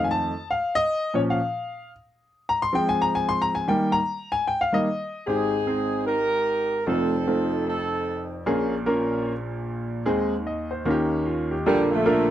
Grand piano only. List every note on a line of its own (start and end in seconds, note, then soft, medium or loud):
0.00 0.31 F2 medium
0.00 0.31 D#3 soft
0.00 0.31 A3 medium
0.04 0.10 G#5 medium
0.11 0.47 A5 medium
0.51 0.75 F5 medium
0.75 1.12 D#5 loud
1.14 1.38 A#2 medium
1.14 1.38 F3 medium
1.14 1.38 C#4 medium
1.14 1.20 C#5 medium
1.30 1.90 F5 medium
2.49 2.61 A#5 medium
2.62 2.76 C6 loud
2.73 3.64 F3 medium
2.73 3.64 G#3 soft
2.73 3.64 C4 medium
2.73 2.89 G5 loud
2.89 3.02 G#5 loud
3.02 3.15 A#5 loud
3.15 3.29 G#5 loud
3.29 3.41 C6 loud
3.42 3.55 A#5 loud
3.55 3.68 G#5 medium
3.68 3.97 D#3 medium
3.68 3.97 G3 medium
3.68 3.97 A#3 medium
3.68 3.94 G5 medium
3.92 4.33 A#5 loud
4.32 4.48 G#5 loud
4.47 4.61 G5 medium
4.61 4.75 F5 medium
4.72 4.86 D#3 soft
4.72 4.86 G3 soft
4.72 4.86 A#3 medium
4.72 5.23 D#5 medium
5.27 6.83 G#1 soft
5.27 6.83 G#2 soft
5.27 5.53 G#3 medium
5.27 5.53 C4 soft
5.27 5.53 D#4 medium
5.27 5.53 G4 medium
5.67 6.12 G#3 medium
5.67 6.12 C4 medium
5.67 6.12 D#4 soft
5.67 6.12 G#4 medium
6.87 8.43 F1 soft
6.87 8.43 F2 medium
6.87 7.13 A3 medium
6.87 7.13 C4 medium
6.87 7.13 D#4 medium
6.87 7.13 F4 medium
7.27 7.72 A3 medium
7.27 7.72 C4 medium
7.27 7.72 D#4 medium
7.27 7.72 F4 medium
8.46 10.03 A#1 medium
8.46 10.03 A#2 medium
8.46 8.73 A#3 medium
8.46 8.73 C#4 medium
8.46 8.73 F4 medium
8.46 8.73 G#4 medium
8.86 9.32 A#3 medium
8.86 9.31 C#4 medium
8.86 9.32 F4 medium
8.86 9.32 A#4 medium
10.06 10.82 D#2 medium
10.06 10.82 D#3 medium
10.06 10.32 G#3 medium
10.06 10.33 C4 medium
10.06 10.33 D#4 medium
10.06 10.33 G#4 medium
10.47 10.70 D#5 medium
10.71 11.09 C5 medium
10.85 11.61 D#2 medium
10.85 11.62 D#3 medium
10.85 11.54 A#3 medium
10.85 11.53 C#4 medium
10.85 11.53 D#4 medium
10.85 10.92 F4 medium
10.91 11.28 G4 medium
11.26 11.50 F4 medium
11.51 11.89 G4 medium
11.66 12.30 A#1 medium
11.66 12.30 A#2 medium
11.66 11.92 A#3 medium
11.66 11.92 D4 medium
11.66 11.92 F4 medium
11.66 11.92 A4 medium
11.66 11.92 A#4 medium
12.06 12.30 A#3 medium
12.06 12.30 D4 medium
12.06 12.30 F4 medium
12.06 12.30 A4 medium
12.06 12.30 A#4 medium